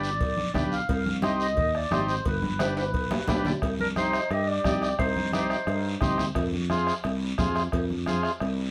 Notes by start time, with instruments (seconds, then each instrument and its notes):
Already playing: fretless electric bass G1, transistor combo organ D4 G4 B4, accordion D5
0.03 short guiro
0.20 fretless electric bass B1, bombo low, cowbell, high conga, long guiro
0.37 high conga
0.54 fretless electric bass B1, transistor combo organ D4 G4 B4, accordion D5, bombo low, bombo rim, high conga, low conga, short guiro
0.72 accordion F5, short guiro
0.89 fretless electric bass C2, bombo low, cowbell, high conga, long guiro
1.06 high conga
1.22 transistor combo organ D#4 G4 C5, accordion D#5, bombo rim, high conga, short guiro
1.40 accordion D#5, short guiro
1.57 fretless electric bass D#2, bombo low, cowbell, high conga, long guiro
1.75 accordion D5, bombo rim
1.91 fretless electric bass G#1, transistor combo organ D#4 G4 C5, bombo rim, high conga, low timbale, short guiro
2.08 accordion C5, short guiro
2.25 fretless electric bass G1, accordion B4, bombo low, cowbell, high conga, long guiro
2.43 high conga, low conga
2.59 transistor combo organ D4 G4 B4, bombo rim, high conga, high timbale, short guiro
2.77 high timbale, short guiro
2.94 fretless electric bass B1, bombo low, cowbell, high conga, long guiro
3.11 bombo rim, high conga, low timbale
3.28 fretless electric bass B1, transistor combo organ D4 G4 B4, bombo low, bombo rim, high conga, low timbale, short guiro
3.45 low conga, low timbale, short guiro
3.62 fretless electric bass C2, bombo low, bombo rim, cowbell, long guiro
3.79 accordion D4, clarinet A#4, high conga
3.96 transistor combo organ D#4 G4 C5, accordion D#4, clarinet C5, bombo rim, high conga, short guiro
4.13 bombo rim, short guiro
4.31 fretless electric bass G2, accordion G4, clarinet D#5, bombo rim, cowbell, long guiro
4.49 accordion G4, clarinet D5
4.64 fretless electric bass C2, transistor combo organ D#4 G4 D5, bombo low, bombo rim, high conga, low timbale, short guiro
4.82 bombo rim, short guiro
4.99 fretless electric bass C2, accordion D#4, clarinet C5, bombo low, bombo rim, cowbell, long guiro
5.16 high conga
5.33 transistor combo organ D#4 G4 D5, accordion D#4, clarinet C5, bombo rim, high conga, short guiro
5.50 bombo rim, short guiro
5.67 fretless electric bass G2, bombo rim, cowbell, long guiro
6.01 fretless electric bass C2, transistor combo organ D#4 G4 C5, bombo low, bombo rim, high conga, low conga, short guiro
6.18 bombo rim, low conga, short guiro
6.35 fretless electric bass F2, bombo low, bombo rim, cowbell, long guiro
6.53 high conga
6.70 transistor combo organ F4 G#4 C5, bombo rim, high conga, short guiro
6.87 bombo rim, short guiro
7.04 fretless electric bass C2, bombo rim, cowbell, long guiro
7.38 fretless electric bass F2, transistor combo organ F4 G#4 C5, bombo low, bombo rim, high conga, low timbale, short guiro
7.56 bombo rim, short guiro
7.72 fretless electric bass F2, bombo low, bombo rim, cowbell, long guiro
7.90 high conga
8.06 transistor combo organ F4 G#4 C5, bombo rim, high conga, short guiro
8.23 bombo rim, short guiro
8.40 fretless electric bass C2, bombo rim, cowbell, long guiro